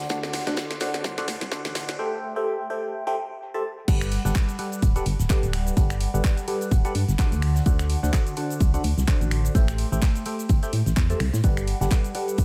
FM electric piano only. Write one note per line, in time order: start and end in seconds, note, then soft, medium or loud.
0.10 0.44 D3 medium
0.10 0.44 F#4 medium
0.10 0.44 A4 medium
0.10 0.44 C5 medium
0.10 0.44 D5 medium
0.10 0.44 F#5 medium
0.47 0.78 D3 medium
0.47 0.78 F#4 medium
0.47 0.78 A4 medium
0.47 0.78 C5 medium
0.47 0.78 D5 medium
0.47 0.78 F#5 medium
0.81 1.15 D3 medium
0.81 1.15 F#4 medium
0.81 1.15 A4 medium
0.81 1.15 C5 medium
0.81 1.15 D5 medium
0.81 1.15 F#5 medium
1.18 1.26 D3 medium
1.18 1.26 F#4 medium
1.18 1.26 A4 medium
1.18 1.26 C5 medium
1.18 1.26 D5 medium
1.18 1.27 F#5 loud
1.52 1.97 D3 medium
1.52 1.97 F#4 medium
1.52 1.97 A4 medium
1.52 1.97 C5 medium
1.52 1.97 D5 medium
1.52 1.97 F#5 medium
1.99 2.33 A3 medium
1.99 2.33 G4 medium
1.99 2.33 A4 medium
1.99 2.33 C5 medium
1.99 2.33 E5 medium
1.99 2.33 G5 medium
2.36 2.67 A3 medium
2.36 2.67 G4 medium
2.36 2.67 A4 medium
2.36 2.67 C5 medium
2.36 2.67 E5 medium
2.36 2.67 G5 medium
2.70 3.04 A3 medium
2.70 3.04 G4 medium
2.70 3.04 A4 medium
2.70 3.04 C5 medium
2.70 3.04 E5 medium
2.70 3.04 G5 medium
3.07 3.15 A3 loud
3.07 3.15 G4 medium
3.07 3.15 A4 medium
3.07 3.15 C5 medium
3.07 3.15 E5 medium
3.07 3.15 G5 loud
3.54 3.63 A3 medium
3.54 3.63 G4 medium
3.54 3.63 A4 medium
3.54 3.63 C5 medium
3.54 3.63 E5 medium
3.54 3.63 A5 medium
3.88 4.22 G3 medium
3.88 4.22 G4 medium
3.88 4.22 A4 medium
3.88 4.22 B4 medium
3.88 4.22 D5 medium
3.88 4.22 F#5 medium
4.25 4.56 G3 medium
4.25 4.56 G4 medium
4.25 4.56 A4 medium
4.25 4.56 B4 medium
4.25 4.56 D5 medium
4.25 4.56 F#5 medium
4.59 4.93 G3 medium
4.59 4.93 G4 medium
4.59 4.93 A4 medium
4.59 4.93 B4 medium
4.59 4.93 D5 medium
4.59 4.93 F#5 medium
4.96 5.04 G3 medium
4.96 5.04 G4 medium
4.96 5.04 A4 medium
4.96 5.04 B4 medium
4.96 5.04 D5 medium
4.96 5.04 F#5 loud
5.30 5.74 G3 medium
5.30 5.74 G4 medium
5.30 5.75 A4 medium
5.30 5.75 B4 medium
5.30 5.75 D5 medium
5.30 5.75 F#5 medium
5.77 6.11 G3 medium
5.77 6.11 G4 medium
5.77 6.11 A4 medium
5.77 6.11 B4 medium
5.77 6.11 D5 medium
5.77 6.11 F#5 medium
6.14 6.45 G3 medium
6.14 6.45 G4 medium
6.14 6.45 A4 medium
6.14 6.45 B4 medium
6.14 6.45 D5 medium
6.14 6.45 F#5 medium
6.48 6.82 G3 medium
6.48 6.82 G4 medium
6.48 6.82 A4 medium
6.48 6.82 B4 medium
6.48 6.82 D5 medium
6.48 6.82 F#5 medium
6.85 6.93 G3 medium
6.85 6.93 G4 medium
6.85 6.93 A4 medium
6.85 6.93 B4 medium
6.85 6.93 D5 medium
6.85 6.93 F#5 loud
7.19 7.64 D3 medium
7.19 7.64 F#4 medium
7.19 7.64 A4 medium
7.19 7.64 C5 medium
7.19 7.64 D5 medium
7.19 7.64 F#5 medium
7.66 8.00 D3 medium
7.66 8.00 F#4 medium
7.66 8.00 A4 medium
7.66 8.00 C5 medium
7.66 8.00 D5 medium
7.66 8.00 F#5 medium
8.03 8.34 D3 medium
8.03 8.34 F#4 medium
8.03 8.34 A4 medium
8.03 8.34 C5 medium
8.03 8.34 D5 medium
8.03 8.34 F#5 medium
8.37 8.71 D3 medium
8.37 8.71 F#4 medium
8.37 8.71 A4 medium
8.37 8.71 C5 medium
8.37 8.71 D5 medium
8.37 8.71 F#5 medium
8.74 8.82 D3 medium
8.74 8.82 F#4 medium
8.74 8.82 A4 medium
8.74 8.82 C5 medium
8.74 8.82 D5 medium
8.74 8.82 F#5 loud
9.08 9.53 D3 medium
9.08 9.53 F#4 medium
9.08 9.53 A4 medium
9.08 9.53 C5 medium
9.08 9.53 D5 medium
9.08 9.53 F#5 medium
9.55 9.89 A3 medium
9.55 9.89 G4 medium
9.55 9.89 A4 medium
9.55 9.89 C5 medium
9.55 9.89 E5 medium
9.55 9.89 G5 medium
9.92 10.23 A3 medium
9.92 10.23 G4 medium
9.92 10.23 A4 medium
9.92 10.23 C5 medium
9.92 10.23 E5 medium
9.92 10.23 G5 medium
10.26 10.60 A3 medium
10.26 10.60 G4 medium
10.26 10.60 A4 medium
10.26 10.60 C5 medium
10.26 10.60 E5 medium
10.26 10.60 G5 medium
10.63 10.71 A3 medium
10.63 10.71 G4 medium
10.63 10.71 A4 medium
10.63 10.71 C5 medium
10.63 10.71 E5 medium
10.63 10.71 G5 loud
11.10 11.19 A3 medium
11.10 11.19 G4 medium
11.10 11.19 A4 medium
11.10 11.19 C5 medium
11.10 11.19 E5 medium
11.10 11.19 A5 medium
11.44 11.78 G3 medium
11.44 11.78 G4 medium
11.44 11.78 A4 medium
11.44 11.78 B4 medium
11.44 11.78 D5 medium
11.44 11.78 F#5 medium
11.81 12.12 G3 medium
11.81 12.12 G4 medium
11.81 12.12 A4 medium
11.81 12.12 B4 medium
11.81 12.12 D5 medium
11.81 12.12 F#5 medium
12.15 12.45 G3 medium
12.15 12.45 G4 medium
12.15 12.45 A4 medium
12.15 12.45 B4 medium
12.15 12.45 D5 medium
12.15 12.45 F#5 medium